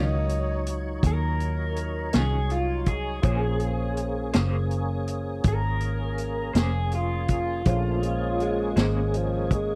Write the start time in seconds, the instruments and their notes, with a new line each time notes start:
Already playing: fingered electric bass C#2, clean electric guitar D#3 F#3 C#4 F4, tonewheel organ F#3 D#4 C#5, tenor saxophone D#4, upright piano D#4 F4 A#4 C#5
0.29 closed hi-hat
0.67 closed hi-hat
1.03 fingered electric bass D#2, overdriven electric guitar A#4, kick, closed hi-hat
1.40 closed hi-hat
1.76 closed hi-hat
2.13 fingered electric bass C2, clean electric guitar D#3 F#3 C#4 F4, overdriven electric guitar G#4, snare, closed hi-hat
2.50 overdriven electric guitar F4, closed hi-hat
2.86 overdriven electric guitar G#4, kick, closed hi-hat
3.22 fingered electric bass A#1, clean electric guitar A#3 C#4 G#4 C5, tonewheel organ A#3 C#4 G#4, upright piano F4 G#4 C5 C#5, kick, closed hi-hat
3.60 closed hi-hat
3.97 closed hi-hat
4.33 fingered electric bass F#1, clean electric guitar A#3 C#4 G#4 C5, snare, closed hi-hat
4.71 closed hi-hat
5.07 closed hi-hat
5.44 fingered electric bass G#1, kick, closed hi-hat
5.48 overdriven electric guitar A#4
5.80 closed hi-hat
6.18 closed hi-hat
6.53 fingered electric bass F1, clean electric guitar A#3 C#4 G#4 C5, snare, closed hi-hat
6.58 overdriven electric guitar G#4
6.92 overdriven electric guitar F4, closed hi-hat
7.28 overdriven electric guitar F4, kick, closed hi-hat
7.65 fingered electric bass A#1, tonewheel organ A3 A#3 C#4 D4, upright piano F4 G#4 C5 C#5, kick, closed hi-hat
8.02 tonewheel organ G#3 A#3 C#4 G#4, closed hi-hat
8.40 tenor saxophone G#3, closed hi-hat
8.76 fingered electric bass G#1, clean electric guitar A#3 C#4 G#4 C5, snare, closed hi-hat
9.14 tenor saxophone F3, closed hi-hat
9.51 tenor saxophone G#3, kick, closed hi-hat